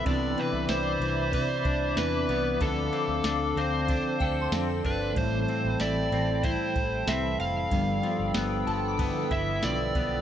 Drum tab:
RD |xxxxxxxx|xxxxxxxx|xxxxxxxx|xxxxxxxx|
TB |--x---x-|--x---x-|--x---x-|--x---x-|
SD |--o---o-|--o---o-|--o---o-|--o---o-|
BD |o---oo--|o---oo-o|o---oo--|o---oo-o|